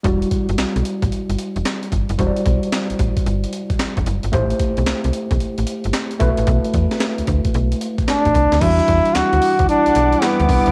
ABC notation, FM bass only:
X:1
M:4/4
L:1/16
Q:"Swing 16ths" 1/4=112
K:Em
V:1 name="FM bass" clef=bass
E,,,2 z G,,, z B,,, z A,,, z G,,, z E,,, z2 G,,, F,,, | E,,, z B,,, z2 A,,, A,,, z G,,,2 z3 E,,, F,,, G,,, | A,,,2 z B,,, z C,, z B,,, z A,,, z G,,, z2 B,,, A,,, | B,,, z E,, z2 D,, D,, z B,,,2 z3 A,,, C,, D,, |
E,,2 E,, z D,, D,, z D,, z B,,, B,,,2 z D,, C,, D,, |]